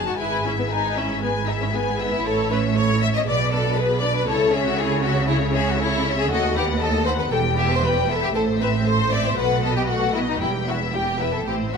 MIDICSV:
0, 0, Header, 1, 6, 480
1, 0, Start_track
1, 0, Tempo, 514139
1, 176, Time_signature, 4, 2, 24, 8
1, 3055, Tempo, 505902
1, 7375, Tempo, 519481
1, 11023, End_track
2, 0, Start_track
2, 0, Title_t, "Violin section"
2, 0, Program_c, 0, 48
2, 0, Note_on_c, 0, 81, 38
2, 172, Note_on_c, 0, 80, 39
2, 176, Note_off_c, 0, 81, 0
2, 397, Note_off_c, 0, 80, 0
2, 416, Note_on_c, 0, 76, 37
2, 655, Note_on_c, 0, 80, 42
2, 656, Note_off_c, 0, 76, 0
2, 893, Note_on_c, 0, 76, 38
2, 895, Note_off_c, 0, 80, 0
2, 1135, Note_off_c, 0, 76, 0
2, 1139, Note_on_c, 0, 80, 43
2, 1361, Note_off_c, 0, 80, 0
2, 1375, Note_on_c, 0, 76, 38
2, 1616, Note_off_c, 0, 76, 0
2, 1617, Note_on_c, 0, 80, 43
2, 1855, Note_on_c, 0, 76, 42
2, 1857, Note_off_c, 0, 80, 0
2, 2096, Note_off_c, 0, 76, 0
2, 2103, Note_on_c, 0, 73, 43
2, 2323, Note_off_c, 0, 73, 0
2, 2338, Note_on_c, 0, 76, 41
2, 2577, Note_off_c, 0, 76, 0
2, 2578, Note_on_c, 0, 73, 44
2, 2817, Note_off_c, 0, 73, 0
2, 2818, Note_on_c, 0, 76, 44
2, 3054, Note_on_c, 0, 71, 46
2, 3055, Note_off_c, 0, 76, 0
2, 3276, Note_off_c, 0, 71, 0
2, 3290, Note_on_c, 0, 74, 42
2, 3527, Note_off_c, 0, 74, 0
2, 3532, Note_on_c, 0, 71, 49
2, 3767, Note_off_c, 0, 71, 0
2, 3776, Note_on_c, 0, 74, 48
2, 4003, Note_on_c, 0, 73, 47
2, 4009, Note_off_c, 0, 74, 0
2, 4224, Note_off_c, 0, 73, 0
2, 4248, Note_on_c, 0, 76, 47
2, 4483, Note_off_c, 0, 76, 0
2, 4487, Note_on_c, 0, 73, 45
2, 4722, Note_on_c, 0, 76, 48
2, 4723, Note_off_c, 0, 73, 0
2, 4962, Note_off_c, 0, 76, 0
2, 4970, Note_on_c, 0, 73, 49
2, 5191, Note_off_c, 0, 73, 0
2, 5209, Note_on_c, 0, 76, 45
2, 5448, Note_off_c, 0, 76, 0
2, 5452, Note_on_c, 0, 73, 50
2, 5688, Note_off_c, 0, 73, 0
2, 5693, Note_on_c, 0, 76, 51
2, 5928, Note_off_c, 0, 76, 0
2, 5931, Note_on_c, 0, 75, 49
2, 6151, Note_off_c, 0, 75, 0
2, 6169, Note_on_c, 0, 78, 48
2, 6408, Note_on_c, 0, 75, 46
2, 6409, Note_off_c, 0, 78, 0
2, 6651, Note_off_c, 0, 75, 0
2, 6655, Note_on_c, 0, 78, 49
2, 6896, Note_off_c, 0, 78, 0
2, 6904, Note_on_c, 0, 79, 51
2, 7123, Note_off_c, 0, 79, 0
2, 7147, Note_on_c, 0, 76, 45
2, 7381, Note_off_c, 0, 76, 0
2, 7388, Note_on_c, 0, 79, 46
2, 7617, Note_off_c, 0, 79, 0
2, 7624, Note_on_c, 0, 76, 48
2, 7856, Note_off_c, 0, 76, 0
2, 7862, Note_on_c, 0, 72, 47
2, 8079, Note_off_c, 0, 72, 0
2, 8098, Note_on_c, 0, 76, 47
2, 8333, Note_off_c, 0, 76, 0
2, 8340, Note_on_c, 0, 72, 44
2, 8573, Note_off_c, 0, 72, 0
2, 8574, Note_on_c, 0, 76, 46
2, 8808, Note_on_c, 0, 78, 46
2, 8809, Note_off_c, 0, 76, 0
2, 9028, Note_off_c, 0, 78, 0
2, 9043, Note_on_c, 0, 75, 41
2, 9278, Note_on_c, 0, 78, 47
2, 9282, Note_off_c, 0, 75, 0
2, 9519, Note_off_c, 0, 78, 0
2, 9522, Note_on_c, 0, 75, 47
2, 9761, Note_off_c, 0, 75, 0
2, 9764, Note_on_c, 0, 79, 43
2, 9987, Note_off_c, 0, 79, 0
2, 10004, Note_on_c, 0, 76, 41
2, 10243, Note_off_c, 0, 76, 0
2, 10243, Note_on_c, 0, 79, 42
2, 10484, Note_off_c, 0, 79, 0
2, 10486, Note_on_c, 0, 76, 38
2, 10726, Note_on_c, 0, 72, 41
2, 10729, Note_off_c, 0, 76, 0
2, 10956, Note_off_c, 0, 72, 0
2, 10975, Note_on_c, 0, 76, 37
2, 11023, Note_off_c, 0, 76, 0
2, 11023, End_track
3, 0, Start_track
3, 0, Title_t, "Violin section"
3, 0, Program_c, 1, 48
3, 58, Note_on_c, 1, 66, 53
3, 105, Note_off_c, 1, 66, 0
3, 183, Note_on_c, 1, 64, 55
3, 414, Note_off_c, 1, 64, 0
3, 424, Note_on_c, 1, 61, 50
3, 470, Note_off_c, 1, 61, 0
3, 544, Note_on_c, 1, 59, 46
3, 590, Note_off_c, 1, 59, 0
3, 652, Note_on_c, 1, 63, 59
3, 889, Note_off_c, 1, 63, 0
3, 896, Note_on_c, 1, 61, 49
3, 1132, Note_on_c, 1, 59, 54
3, 1136, Note_off_c, 1, 61, 0
3, 1207, Note_off_c, 1, 59, 0
3, 1369, Note_on_c, 1, 63, 54
3, 1419, Note_off_c, 1, 63, 0
3, 1502, Note_on_c, 1, 61, 45
3, 1549, Note_off_c, 1, 61, 0
3, 1615, Note_on_c, 1, 59, 54
3, 1969, Note_off_c, 1, 59, 0
3, 1979, Note_on_c, 1, 64, 59
3, 2095, Note_on_c, 1, 69, 66
3, 2099, Note_off_c, 1, 64, 0
3, 2336, Note_off_c, 1, 69, 0
3, 2340, Note_on_c, 1, 71, 63
3, 2415, Note_off_c, 1, 71, 0
3, 2575, Note_on_c, 1, 73, 64
3, 2811, Note_off_c, 1, 73, 0
3, 2819, Note_on_c, 1, 76, 64
3, 2866, Note_off_c, 1, 76, 0
3, 2941, Note_on_c, 1, 75, 60
3, 2987, Note_off_c, 1, 75, 0
3, 3053, Note_on_c, 1, 74, 68
3, 3287, Note_off_c, 1, 74, 0
3, 3297, Note_on_c, 1, 69, 67
3, 3526, Note_off_c, 1, 69, 0
3, 3535, Note_on_c, 1, 71, 66
3, 3763, Note_on_c, 1, 74, 76
3, 3769, Note_off_c, 1, 71, 0
3, 3884, Note_off_c, 1, 74, 0
3, 3895, Note_on_c, 1, 71, 68
3, 4006, Note_off_c, 1, 71, 0
3, 4011, Note_on_c, 1, 69, 70
3, 4240, Note_off_c, 1, 69, 0
3, 4240, Note_on_c, 1, 68, 68
3, 4360, Note_off_c, 1, 68, 0
3, 4360, Note_on_c, 1, 66, 65
3, 4477, Note_off_c, 1, 66, 0
3, 4481, Note_on_c, 1, 68, 67
3, 4714, Note_on_c, 1, 66, 68
3, 4720, Note_off_c, 1, 68, 0
3, 4953, Note_off_c, 1, 66, 0
3, 4955, Note_on_c, 1, 64, 71
3, 5031, Note_off_c, 1, 64, 0
3, 5205, Note_on_c, 1, 68, 69
3, 5323, Note_off_c, 1, 68, 0
3, 5327, Note_on_c, 1, 66, 62
3, 5439, Note_on_c, 1, 64, 73
3, 5446, Note_off_c, 1, 66, 0
3, 5794, Note_off_c, 1, 64, 0
3, 5814, Note_on_c, 1, 68, 65
3, 5926, Note_off_c, 1, 68, 0
3, 5926, Note_on_c, 1, 66, 72
3, 6161, Note_off_c, 1, 66, 0
3, 6175, Note_on_c, 1, 67, 64
3, 6251, Note_off_c, 1, 67, 0
3, 6401, Note_on_c, 1, 69, 78
3, 6643, Note_off_c, 1, 69, 0
3, 6652, Note_on_c, 1, 72, 72
3, 6701, Note_off_c, 1, 72, 0
3, 6775, Note_on_c, 1, 71, 54
3, 6823, Note_off_c, 1, 71, 0
3, 6882, Note_on_c, 1, 69, 69
3, 6958, Note_off_c, 1, 69, 0
3, 7130, Note_on_c, 1, 67, 71
3, 7250, Note_off_c, 1, 67, 0
3, 7260, Note_on_c, 1, 72, 69
3, 7378, Note_off_c, 1, 72, 0
3, 7379, Note_on_c, 1, 71, 62
3, 7613, Note_off_c, 1, 71, 0
3, 7623, Note_on_c, 1, 69, 71
3, 7736, Note_off_c, 1, 69, 0
3, 7748, Note_on_c, 1, 67, 65
3, 7792, Note_off_c, 1, 67, 0
3, 7855, Note_on_c, 1, 69, 70
3, 7929, Note_off_c, 1, 69, 0
3, 8105, Note_on_c, 1, 71, 68
3, 8179, Note_off_c, 1, 71, 0
3, 8337, Note_on_c, 1, 72, 70
3, 8567, Note_off_c, 1, 72, 0
3, 8581, Note_on_c, 1, 74, 72
3, 8693, Note_off_c, 1, 74, 0
3, 8708, Note_on_c, 1, 72, 65
3, 8812, Note_on_c, 1, 71, 68
3, 8817, Note_off_c, 1, 72, 0
3, 9042, Note_off_c, 1, 71, 0
3, 9048, Note_on_c, 1, 69, 68
3, 9162, Note_off_c, 1, 69, 0
3, 9165, Note_on_c, 1, 67, 66
3, 9212, Note_off_c, 1, 67, 0
3, 9277, Note_on_c, 1, 66, 65
3, 9514, Note_off_c, 1, 66, 0
3, 9514, Note_on_c, 1, 64, 65
3, 9563, Note_off_c, 1, 64, 0
3, 9644, Note_on_c, 1, 63, 58
3, 9760, Note_off_c, 1, 63, 0
3, 9765, Note_on_c, 1, 64, 59
3, 9839, Note_off_c, 1, 64, 0
3, 10007, Note_on_c, 1, 66, 54
3, 10081, Note_off_c, 1, 66, 0
3, 10248, Note_on_c, 1, 67, 61
3, 10481, Note_off_c, 1, 67, 0
3, 10485, Note_on_c, 1, 71, 59
3, 10606, Note_off_c, 1, 71, 0
3, 10619, Note_on_c, 1, 69, 52
3, 10735, Note_off_c, 1, 69, 0
3, 10738, Note_on_c, 1, 67, 53
3, 10812, Note_off_c, 1, 67, 0
3, 10987, Note_on_c, 1, 66, 55
3, 11023, Note_off_c, 1, 66, 0
3, 11023, End_track
4, 0, Start_track
4, 0, Title_t, "Viola section"
4, 0, Program_c, 2, 48
4, 0, Note_on_c, 2, 63, 34
4, 0, Note_on_c, 2, 66, 34
4, 170, Note_on_c, 2, 71, 39
4, 172, Note_on_c, 2, 68, 41
4, 175, Note_off_c, 2, 66, 0
4, 176, Note_off_c, 2, 63, 0
4, 396, Note_off_c, 2, 71, 0
4, 397, Note_off_c, 2, 68, 0
4, 417, Note_on_c, 2, 64, 36
4, 417, Note_on_c, 2, 68, 36
4, 641, Note_off_c, 2, 68, 0
4, 651, Note_on_c, 2, 71, 39
4, 652, Note_on_c, 2, 68, 37
4, 656, Note_off_c, 2, 64, 0
4, 880, Note_off_c, 2, 68, 0
4, 890, Note_on_c, 2, 64, 38
4, 892, Note_on_c, 2, 68, 38
4, 893, Note_off_c, 2, 71, 0
4, 1116, Note_off_c, 2, 68, 0
4, 1127, Note_on_c, 2, 68, 39
4, 1130, Note_on_c, 2, 71, 40
4, 1133, Note_off_c, 2, 64, 0
4, 1355, Note_off_c, 2, 68, 0
4, 1357, Note_off_c, 2, 71, 0
4, 1373, Note_on_c, 2, 64, 38
4, 1373, Note_on_c, 2, 68, 40
4, 1605, Note_off_c, 2, 68, 0
4, 1615, Note_off_c, 2, 64, 0
4, 1615, Note_on_c, 2, 71, 38
4, 1616, Note_on_c, 2, 68, 40
4, 1844, Note_off_c, 2, 68, 0
4, 1856, Note_off_c, 2, 71, 0
4, 1856, Note_on_c, 2, 68, 38
4, 1857, Note_on_c, 2, 64, 40
4, 2087, Note_off_c, 2, 64, 0
4, 2097, Note_off_c, 2, 68, 0
4, 2097, Note_on_c, 2, 69, 45
4, 2098, Note_on_c, 2, 64, 43
4, 2320, Note_off_c, 2, 64, 0
4, 2320, Note_off_c, 2, 69, 0
4, 2335, Note_on_c, 2, 61, 41
4, 2336, Note_on_c, 2, 73, 43
4, 2574, Note_on_c, 2, 64, 43
4, 2576, Note_off_c, 2, 61, 0
4, 2576, Note_off_c, 2, 73, 0
4, 2576, Note_on_c, 2, 69, 40
4, 2815, Note_off_c, 2, 64, 0
4, 2815, Note_on_c, 2, 73, 45
4, 2816, Note_on_c, 2, 61, 42
4, 2817, Note_off_c, 2, 69, 0
4, 3052, Note_on_c, 2, 68, 45
4, 3053, Note_on_c, 2, 59, 44
4, 3054, Note_off_c, 2, 73, 0
4, 3055, Note_off_c, 2, 61, 0
4, 3274, Note_off_c, 2, 68, 0
4, 3275, Note_off_c, 2, 59, 0
4, 3290, Note_on_c, 2, 62, 45
4, 3290, Note_on_c, 2, 71, 43
4, 3527, Note_off_c, 2, 62, 0
4, 3527, Note_off_c, 2, 71, 0
4, 3529, Note_on_c, 2, 68, 45
4, 3530, Note_on_c, 2, 59, 42
4, 3762, Note_on_c, 2, 71, 43
4, 3763, Note_on_c, 2, 62, 41
4, 3766, Note_off_c, 2, 59, 0
4, 3766, Note_off_c, 2, 68, 0
4, 4000, Note_on_c, 2, 64, 50
4, 4002, Note_off_c, 2, 62, 0
4, 4002, Note_off_c, 2, 71, 0
4, 4002, Note_on_c, 2, 69, 45
4, 4222, Note_off_c, 2, 64, 0
4, 4224, Note_off_c, 2, 69, 0
4, 4235, Note_on_c, 2, 61, 44
4, 4236, Note_on_c, 2, 73, 45
4, 4476, Note_on_c, 2, 64, 46
4, 4477, Note_off_c, 2, 61, 0
4, 4478, Note_off_c, 2, 73, 0
4, 4478, Note_on_c, 2, 69, 45
4, 4714, Note_on_c, 2, 73, 45
4, 4715, Note_on_c, 2, 61, 48
4, 4718, Note_off_c, 2, 64, 0
4, 4719, Note_off_c, 2, 69, 0
4, 4957, Note_on_c, 2, 64, 50
4, 4958, Note_off_c, 2, 61, 0
4, 4958, Note_off_c, 2, 73, 0
4, 4959, Note_on_c, 2, 69, 48
4, 5184, Note_off_c, 2, 64, 0
4, 5186, Note_off_c, 2, 69, 0
4, 5203, Note_on_c, 2, 73, 48
4, 5205, Note_on_c, 2, 61, 46
4, 5437, Note_on_c, 2, 64, 52
4, 5437, Note_on_c, 2, 69, 50
4, 5445, Note_off_c, 2, 73, 0
4, 5446, Note_off_c, 2, 61, 0
4, 5679, Note_on_c, 2, 61, 45
4, 5680, Note_off_c, 2, 64, 0
4, 5680, Note_on_c, 2, 73, 48
4, 5681, Note_off_c, 2, 69, 0
4, 5917, Note_on_c, 2, 57, 48
4, 5917, Note_on_c, 2, 69, 53
4, 5921, Note_off_c, 2, 61, 0
4, 5921, Note_off_c, 2, 73, 0
4, 6144, Note_off_c, 2, 57, 0
4, 6144, Note_off_c, 2, 69, 0
4, 6163, Note_on_c, 2, 71, 46
4, 6164, Note_on_c, 2, 59, 49
4, 6407, Note_off_c, 2, 59, 0
4, 6407, Note_off_c, 2, 71, 0
4, 6409, Note_on_c, 2, 57, 47
4, 6410, Note_on_c, 2, 69, 48
4, 6650, Note_on_c, 2, 59, 50
4, 6650, Note_on_c, 2, 71, 47
4, 6652, Note_off_c, 2, 57, 0
4, 6653, Note_off_c, 2, 69, 0
4, 6887, Note_on_c, 2, 67, 48
4, 6888, Note_on_c, 2, 55, 49
4, 6893, Note_off_c, 2, 59, 0
4, 6893, Note_off_c, 2, 71, 0
4, 7114, Note_off_c, 2, 67, 0
4, 7115, Note_off_c, 2, 55, 0
4, 7128, Note_on_c, 2, 59, 47
4, 7128, Note_on_c, 2, 64, 44
4, 7368, Note_on_c, 2, 67, 44
4, 7372, Note_off_c, 2, 59, 0
4, 7372, Note_off_c, 2, 64, 0
4, 7373, Note_on_c, 2, 55, 45
4, 7607, Note_off_c, 2, 67, 0
4, 7609, Note_on_c, 2, 64, 44
4, 7610, Note_off_c, 2, 55, 0
4, 7612, Note_on_c, 2, 59, 45
4, 7848, Note_off_c, 2, 64, 0
4, 7849, Note_off_c, 2, 59, 0
4, 7849, Note_on_c, 2, 57, 49
4, 7850, Note_on_c, 2, 69, 47
4, 8072, Note_off_c, 2, 57, 0
4, 8072, Note_off_c, 2, 69, 0
4, 8090, Note_on_c, 2, 60, 44
4, 8091, Note_on_c, 2, 72, 44
4, 8329, Note_off_c, 2, 60, 0
4, 8330, Note_off_c, 2, 72, 0
4, 8332, Note_on_c, 2, 69, 44
4, 8333, Note_on_c, 2, 57, 44
4, 8565, Note_on_c, 2, 60, 44
4, 8568, Note_on_c, 2, 72, 44
4, 8569, Note_off_c, 2, 69, 0
4, 8570, Note_off_c, 2, 57, 0
4, 8805, Note_off_c, 2, 60, 0
4, 8806, Note_off_c, 2, 72, 0
4, 8808, Note_on_c, 2, 69, 47
4, 8810, Note_on_c, 2, 57, 44
4, 9028, Note_off_c, 2, 69, 0
4, 9029, Note_off_c, 2, 57, 0
4, 9044, Note_on_c, 2, 71, 42
4, 9045, Note_on_c, 2, 59, 42
4, 9282, Note_off_c, 2, 71, 0
4, 9283, Note_off_c, 2, 59, 0
4, 9287, Note_on_c, 2, 57, 42
4, 9289, Note_on_c, 2, 69, 44
4, 9523, Note_off_c, 2, 57, 0
4, 9524, Note_off_c, 2, 69, 0
4, 9526, Note_on_c, 2, 59, 38
4, 9527, Note_on_c, 2, 71, 41
4, 9763, Note_off_c, 2, 59, 0
4, 9764, Note_off_c, 2, 71, 0
4, 9768, Note_on_c, 2, 67, 46
4, 9769, Note_on_c, 2, 55, 42
4, 9989, Note_off_c, 2, 55, 0
4, 9989, Note_off_c, 2, 67, 0
4, 10006, Note_on_c, 2, 59, 38
4, 10007, Note_on_c, 2, 64, 41
4, 10244, Note_off_c, 2, 59, 0
4, 10244, Note_off_c, 2, 64, 0
4, 10245, Note_on_c, 2, 55, 40
4, 10245, Note_on_c, 2, 67, 39
4, 10484, Note_off_c, 2, 67, 0
4, 10485, Note_off_c, 2, 55, 0
4, 10486, Note_on_c, 2, 64, 38
4, 10487, Note_on_c, 2, 59, 40
4, 10718, Note_off_c, 2, 64, 0
4, 10729, Note_on_c, 2, 64, 38
4, 10730, Note_off_c, 2, 59, 0
4, 10730, Note_on_c, 2, 60, 37
4, 10958, Note_off_c, 2, 60, 0
4, 10958, Note_off_c, 2, 64, 0
4, 10972, Note_on_c, 2, 57, 36
4, 10972, Note_on_c, 2, 60, 36
4, 11023, Note_off_c, 2, 57, 0
4, 11023, Note_off_c, 2, 60, 0
4, 11023, End_track
5, 0, Start_track
5, 0, Title_t, "Cello section"
5, 0, Program_c, 3, 48
5, 0, Note_on_c, 3, 42, 43
5, 172, Note_on_c, 3, 44, 48
5, 173, Note_off_c, 3, 42, 0
5, 2059, Note_off_c, 3, 44, 0
5, 2096, Note_on_c, 3, 45, 54
5, 3035, Note_off_c, 3, 45, 0
5, 3052, Note_on_c, 3, 47, 50
5, 3983, Note_off_c, 3, 47, 0
5, 4003, Note_on_c, 3, 49, 58
5, 5921, Note_on_c, 3, 39, 62
5, 5923, Note_off_c, 3, 49, 0
5, 6890, Note_on_c, 3, 40, 61
5, 6892, Note_off_c, 3, 39, 0
5, 7828, Note_off_c, 3, 40, 0
5, 7846, Note_on_c, 3, 45, 58
5, 8785, Note_off_c, 3, 45, 0
5, 8802, Note_on_c, 3, 47, 52
5, 9739, Note_off_c, 3, 47, 0
5, 9760, Note_on_c, 3, 40, 55
5, 10725, Note_on_c, 3, 45, 44
5, 10727, Note_off_c, 3, 40, 0
5, 11023, Note_off_c, 3, 45, 0
5, 11023, End_track
6, 0, Start_track
6, 0, Title_t, "Double bass section"
6, 0, Program_c, 4, 48
6, 0, Note_on_c, 4, 30, 44
6, 175, Note_on_c, 4, 32, 46
6, 176, Note_off_c, 4, 30, 0
6, 2060, Note_off_c, 4, 32, 0
6, 2098, Note_on_c, 4, 33, 54
6, 3036, Note_off_c, 4, 33, 0
6, 3053, Note_on_c, 4, 35, 57
6, 3983, Note_off_c, 4, 35, 0
6, 4000, Note_on_c, 4, 37, 56
6, 5922, Note_off_c, 4, 37, 0
6, 5923, Note_on_c, 4, 39, 60
6, 6893, Note_off_c, 4, 39, 0
6, 6893, Note_on_c, 4, 28, 57
6, 7830, Note_off_c, 4, 28, 0
6, 7846, Note_on_c, 4, 33, 57
6, 8785, Note_off_c, 4, 33, 0
6, 8806, Note_on_c, 4, 35, 53
6, 9742, Note_off_c, 4, 35, 0
6, 9764, Note_on_c, 4, 28, 54
6, 10724, Note_on_c, 4, 33, 47
6, 10729, Note_off_c, 4, 28, 0
6, 11023, Note_off_c, 4, 33, 0
6, 11023, End_track
0, 0, End_of_file